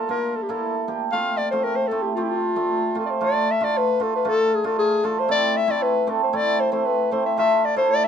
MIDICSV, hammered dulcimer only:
0, 0, Header, 1, 2, 480
1, 0, Start_track
1, 0, Tempo, 519031
1, 91, Time_signature, 2, 2, 24, 8
1, 7470, End_track
2, 0, Start_track
2, 0, Title_t, "Hammered dulcimer"
2, 0, Program_c, 0, 15
2, 81, Note_on_c, 0, 58, 74
2, 87, Note_on_c, 0, 62, 62
2, 90, Note_on_c, 0, 65, 71
2, 268, Note_off_c, 0, 58, 0
2, 269, Note_off_c, 0, 62, 0
2, 269, Note_off_c, 0, 65, 0
2, 451, Note_on_c, 0, 58, 73
2, 453, Note_on_c, 0, 62, 62
2, 459, Note_on_c, 0, 64, 81
2, 632, Note_off_c, 0, 58, 0
2, 632, Note_off_c, 0, 62, 0
2, 634, Note_off_c, 0, 64, 0
2, 812, Note_on_c, 0, 58, 58
2, 812, Note_on_c, 0, 62, 57
2, 817, Note_on_c, 0, 67, 72
2, 931, Note_off_c, 0, 62, 0
2, 932, Note_off_c, 0, 67, 0
2, 933, Note_off_c, 0, 58, 0
2, 1039, Note_on_c, 0, 57, 65
2, 1041, Note_on_c, 0, 60, 58
2, 1044, Note_on_c, 0, 65, 80
2, 1226, Note_off_c, 0, 57, 0
2, 1226, Note_off_c, 0, 60, 0
2, 1226, Note_off_c, 0, 65, 0
2, 1407, Note_on_c, 0, 57, 70
2, 1410, Note_on_c, 0, 60, 64
2, 1412, Note_on_c, 0, 65, 72
2, 1589, Note_off_c, 0, 57, 0
2, 1591, Note_off_c, 0, 60, 0
2, 1591, Note_off_c, 0, 65, 0
2, 1769, Note_on_c, 0, 57, 69
2, 1771, Note_on_c, 0, 60, 60
2, 1773, Note_on_c, 0, 64, 61
2, 1890, Note_off_c, 0, 57, 0
2, 1891, Note_off_c, 0, 60, 0
2, 1892, Note_off_c, 0, 64, 0
2, 2004, Note_on_c, 0, 57, 64
2, 2007, Note_on_c, 0, 60, 64
2, 2011, Note_on_c, 0, 67, 75
2, 2189, Note_off_c, 0, 57, 0
2, 2189, Note_off_c, 0, 60, 0
2, 2189, Note_off_c, 0, 67, 0
2, 2365, Note_on_c, 0, 57, 64
2, 2370, Note_on_c, 0, 60, 63
2, 2370, Note_on_c, 0, 62, 69
2, 2548, Note_off_c, 0, 57, 0
2, 2550, Note_off_c, 0, 62, 0
2, 2551, Note_off_c, 0, 60, 0
2, 2727, Note_on_c, 0, 60, 58
2, 2730, Note_on_c, 0, 57, 66
2, 2731, Note_on_c, 0, 65, 70
2, 2849, Note_off_c, 0, 60, 0
2, 2851, Note_off_c, 0, 57, 0
2, 2851, Note_off_c, 0, 65, 0
2, 2964, Note_on_c, 0, 57, 72
2, 2969, Note_on_c, 0, 65, 82
2, 2970, Note_on_c, 0, 62, 65
2, 3147, Note_off_c, 0, 57, 0
2, 3150, Note_off_c, 0, 65, 0
2, 3151, Note_off_c, 0, 62, 0
2, 3334, Note_on_c, 0, 62, 68
2, 3335, Note_on_c, 0, 57, 67
2, 3337, Note_on_c, 0, 65, 72
2, 3512, Note_off_c, 0, 62, 0
2, 3513, Note_off_c, 0, 57, 0
2, 3513, Note_off_c, 0, 65, 0
2, 3695, Note_on_c, 0, 62, 57
2, 3696, Note_on_c, 0, 57, 65
2, 3698, Note_on_c, 0, 65, 79
2, 3813, Note_off_c, 0, 62, 0
2, 3814, Note_off_c, 0, 57, 0
2, 3814, Note_off_c, 0, 65, 0
2, 3928, Note_on_c, 0, 65, 79
2, 3929, Note_on_c, 0, 57, 78
2, 3935, Note_on_c, 0, 62, 58
2, 4109, Note_off_c, 0, 65, 0
2, 4110, Note_off_c, 0, 57, 0
2, 4113, Note_off_c, 0, 62, 0
2, 4292, Note_on_c, 0, 57, 67
2, 4292, Note_on_c, 0, 62, 72
2, 4295, Note_on_c, 0, 65, 83
2, 4471, Note_off_c, 0, 62, 0
2, 4472, Note_off_c, 0, 65, 0
2, 4473, Note_off_c, 0, 57, 0
2, 4656, Note_on_c, 0, 62, 64
2, 4659, Note_on_c, 0, 65, 84
2, 4660, Note_on_c, 0, 57, 65
2, 4773, Note_off_c, 0, 62, 0
2, 4775, Note_off_c, 0, 57, 0
2, 4775, Note_off_c, 0, 65, 0
2, 4885, Note_on_c, 0, 57, 68
2, 4888, Note_on_c, 0, 60, 73
2, 4890, Note_on_c, 0, 64, 84
2, 5068, Note_off_c, 0, 57, 0
2, 5069, Note_off_c, 0, 60, 0
2, 5070, Note_off_c, 0, 64, 0
2, 5248, Note_on_c, 0, 64, 82
2, 5250, Note_on_c, 0, 57, 69
2, 5251, Note_on_c, 0, 60, 66
2, 5429, Note_off_c, 0, 64, 0
2, 5431, Note_off_c, 0, 57, 0
2, 5431, Note_off_c, 0, 60, 0
2, 5612, Note_on_c, 0, 57, 71
2, 5616, Note_on_c, 0, 60, 64
2, 5619, Note_on_c, 0, 62, 78
2, 5733, Note_off_c, 0, 57, 0
2, 5733, Note_off_c, 0, 60, 0
2, 5733, Note_off_c, 0, 62, 0
2, 5855, Note_on_c, 0, 57, 68
2, 5856, Note_on_c, 0, 60, 65
2, 5856, Note_on_c, 0, 64, 89
2, 6032, Note_off_c, 0, 64, 0
2, 6033, Note_off_c, 0, 60, 0
2, 6034, Note_off_c, 0, 57, 0
2, 6210, Note_on_c, 0, 60, 65
2, 6213, Note_on_c, 0, 64, 71
2, 6215, Note_on_c, 0, 57, 69
2, 6391, Note_off_c, 0, 60, 0
2, 6392, Note_off_c, 0, 64, 0
2, 6393, Note_off_c, 0, 57, 0
2, 6579, Note_on_c, 0, 57, 72
2, 6585, Note_on_c, 0, 60, 61
2, 6587, Note_on_c, 0, 64, 71
2, 6697, Note_off_c, 0, 57, 0
2, 6698, Note_off_c, 0, 60, 0
2, 6698, Note_off_c, 0, 64, 0
2, 6819, Note_on_c, 0, 57, 74
2, 6821, Note_on_c, 0, 62, 63
2, 6826, Note_on_c, 0, 65, 81
2, 6996, Note_off_c, 0, 57, 0
2, 6997, Note_off_c, 0, 62, 0
2, 6999, Note_off_c, 0, 65, 0
2, 7177, Note_on_c, 0, 57, 72
2, 7179, Note_on_c, 0, 62, 64
2, 7181, Note_on_c, 0, 64, 85
2, 7356, Note_off_c, 0, 57, 0
2, 7356, Note_off_c, 0, 62, 0
2, 7357, Note_off_c, 0, 64, 0
2, 7470, End_track
0, 0, End_of_file